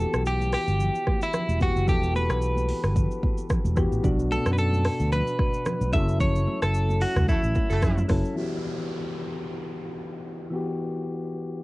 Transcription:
Already playing: E3 B3 F#4 G4 A4
0.00 shaker
0.14 B1, cross-stick, shaker
0.26 G4, shaker
0.40 high conga, shaker
0.52 G4, cross-stick, open hi-hat
0.68 G1, shaker
0.80 low conga, shaker
0.95 shaker
1.07 kick, cross-stick, high conga
1.21 E4, shaker
1.33 cross-stick, low conga, shaker
1.49 E1, high conga, shaker
1.60 E3 B3 F#4 G4, kick, high conga, shaker
1.76 F#1, shaker
1.87 E1 E3 B3 F#4 G4 A4, kick, low conga, shaker
2.03 shaker
2.15 B4, high conga, shaker
2.30 B1, cross-stick, shaker
2.42 shaker
2.56 high conga, shaker
2.69 open hi-hat
2.83 G1, cross-stick, shaker
2.96 kick, low conga, shaker
3.11 shaker
3.23 kick, high conga
3.38 shaker
3.50 kick, cross-stick, low conga, shaker
3.65 E1, high conga, shaker
3.76 E3 B3 F#4 G4, kick, cross-stick, high conga, shaker
3.92 A1, shaker
4.03 B1 B2 B3 D4 F#4, kick, low conga, shaker
4.20 shaker
4.31 A4, high conga, shaker
4.46 F#2, cross-stick, shaker
4.53 B4
4.58 A4, shaker
4.73 high conga, shaker
4.85 cross-stick, open hi-hat
5.00 D2, shaker
5.12 B4, low conga, shaker
5.27 shaker
5.39 kick, cross-stick, high conga
5.54 shaker
5.66 cross-stick, low conga, shaker
5.81 B1, high conga, shaker
5.92 F#1 F#3 C#4 E4 A4 E5, kick, high conga, shaker
6.09 shaker
6.20 C#5, kick, low conga, shaker
6.36 shaker
6.47 high conga
6.62 F#1 A4, cross-stick, shaker
6.74 shaker
6.89 high conga, shaker
7.01 F#4, open hi-hat
7.16 C#2, cross-stick, mid tom, shaker
7.28 A3 E4 F#4 A4, kick, low conga, shaker
7.43 A1, shaker
7.55 kick, high conga, shaker
7.70 F#1 A3 E4 F#4 A4, shaker
7.82 F#2, kick, cross-stick, low conga, shaker
7.98 high conga, shaker
8.08 F#1 F#3 C#4 E4 A4, kick, cross-stick, open hi-hat, high conga, shaker
8.25 shaker
8.34 E3 B3 F#4, downlifter
8.39 G4
10.50 E3 B3 F#4
10.55 G4

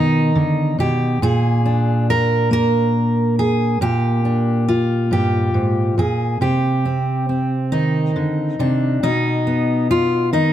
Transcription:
Already playing: B2 D#3 B3 D#4
0.35 D3
0.79 B2 G4
1.22 A#2 G#4
1.66 D4
2.10 A#4
2.51 A#3 A#4
3.39 G#4
3.81 A#2 G4
4.25 D4
4.68 F4
5.11 G2 G4
5.54 G#2
5.98 A#2 G#4
6.41 C3 G4
6.85 C4
7.29 C4
7.72 D#3 D#4
8.16 D3
8.59 C3 D4
9.03 B2 D#4
9.47 B3
9.91 F4
10.33 D#3 D#4

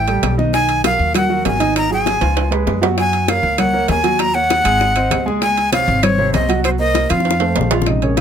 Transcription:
Already playing: A1 G5
0.08 G3 G4 A4, high bongo, high conga, high timbale
0.23 B1, high bongo, low bongo, high conga, high timbale, low timbale
0.38 D#3 D#4 D#5, high conga
0.53 D#3 D#4 D#5 G#5, high bongo, high conga, high timbale
0.69 high bongo, high conga, high timbale
0.84 F#3 F#4 A#4 F5, high bongo, high conga, high timbale, low timbale
0.99 D#2, high bongo, high conga
1.14 F#3 F#4 A#4 F#5, high bongo, high conga, low conga, high timbale
1.29 F#3 F#4 A#4, high bongo, high conga
1.45 G#1 G#5, high bongo, low bongo, high conga, high timbale, low timbale
1.60 D#3 D#4 D#5, high conga, high timbale
1.76 A#5, high bongo, high conga, high timbale
1.90 F#3 F#4 G#4 G#5, high bongo, high conga
2.06 high bongo, high conga, high timbale, low timbale
2.21 C#2 F3 F4 F5, high bongo, high conga, high timbale
2.37 high bongo, high conga, high timbale
2.51 G#3 G#4 B4, high bongo, high conga, low timbale
2.67 F#2, high bongo, low bongo, high conga, low timbale
2.81 F#3 F#4 F#5, high conga, low timbale
2.97 F#3 F#4 F#5 G#5, high bongo, high conga, high timbale
3.13 high bongo, high conga, high timbale
3.28 A#3 A#4 C#5 F5, high bongo, high conga, high timbale, low timbale
3.43 C#2, high bongo, high conga
3.58 A#3 A#4 C#5 F#5, high bongo, high conga, low conga, high timbale
3.73 A#3 A#4 C#5, high bongo, high conga
3.88 D#2 G#5, high bongo, low bongo, high conga, high timbale, low timbale
4.03 F#3 F#4 F#5, high conga, high timbale
4.19 A#5, high bongo, high conga, high timbale
4.34 A#3 A#4 C#5 F#5, high bongo, high conga
4.50 high bongo, high conga, high timbale, low timbale
4.64 G#1 G#3 G#4 G#5, high bongo, high conga, high timbale
4.81 high bongo, high conga
4.96 C4 C5 D#5, high bongo, high conga, high timbale
5.11 C#2, high bongo, low bongo, high conga, high timbale, low timbale
5.26 G#3 G#4 G#5, high conga
5.41 G#3 G#4 G#5, high bongo, high conga, high timbale
5.57 high bongo, high conga, high timbale
5.72 C3 C5 C#5 F5, high bongo, high conga, high timbale, low timbale
5.88 G#1, high bongo, high conga
6.03 C4 C5 C#5, high bongo, high conga, low conga, high timbale
6.18 C3 C5 C#5, high bongo, high conga
6.34 C2 D#5, high bongo, low bongo, high conga, high timbale, low timbale
6.49 F#3 F#4 F#5, high conga, high timbale
6.64 C5, high bongo, high conga, high timbale
6.79 A#3 A#4 C5 D#5, high bongo, high conga
6.95 high bongo, high conga, high timbale, low timbale
7.09 F2 F3 F4 F5, high bongo, high conga, high timbale
7.20 high bongo
7.25 high conga, high timbale
7.31 high bongo
7.40 A3 A4 C5, high timbale
7.56 A#1, high conga, low timbale
7.61 low bongo
7.71 F3 F4 F5, low bongo, high conga, low timbale
7.82 low bongo
7.86 C3 C#3 G#3 D#4 D#5, high bongo, high conga, high timbale
8.02 C#4 G#4 A#4 C#5, high bongo, high conga, high timbale
8.17 high bongo, high conga, high timbale, low timbale

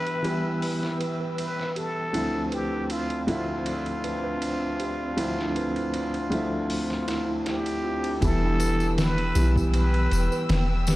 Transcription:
Already playing: E3 G3 B3 D4 E4 G4 B4 E5 G5 E6
0.07 ride
0.23 E3 G3 B3 E4, ride
0.62 open hi-hat
0.83 snare
1.00 B4, ride
1.20 B4
1.38 B4, ride
1.59 snare
1.76 G4 A4, ride
2.13 D2 F3 A3 C4 D4 E4 E5, ride
2.34 D4
2.52 G4 B4, ride
2.90 F4, ride
3.10 ride
3.27 D2 F3 A3 C4 E4 F4 E5, ride
3.66 ride
3.86 ride
4.04 B4, ride
4.24 B4
4.42 ride
4.80 G4, ride
5.17 D2 F3 A3 C4 E4 E5, ride
5.38 D4, snare
5.56 B4, ride
5.76 ride
5.94 ride
6.14 ride
6.30 D2 F3 A3 C4 E4 E5, ride
6.70 open hi-hat
6.90 snare
7.08 E4, snare, ride
7.28 E4
7.46 E4 G4, snare, ride
7.66 ride
7.84 F4
8.04 ride
8.21 E1 E3 G3 B3 E4 A4 B4 G5 E6, kick, ride, tambourine
8.42 D4
8.60 B4, ride, tambourine
8.80 tambourine
8.98 B4, snare, ride, tambourine
9.18 ride
9.35 B1 E3 G3 B3 E4, ride, tambourine
9.56 kick, tambourine
9.74 B4, ride, tambourine
9.94 ride
10.11 E1 B4, ride, tambourine
10.32 B4, tambourine
10.49 E1, snare, ride, tambourine
10.87 G4, snare, ride, tambourine

